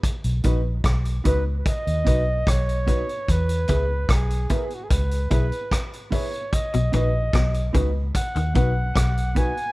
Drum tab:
HH |xxx-xxx-xxx-xxxx|xxx-xxxxxxxxxxox|xxx-xxx-xxx-xxxx|
SD |----r-------r---|----r-------r---|----r-------r---|
BD |o-o-o-o-o-o-o-o-|o-o-o-o-o-o-o-o-|o-o-o-o-o-o-o-o-|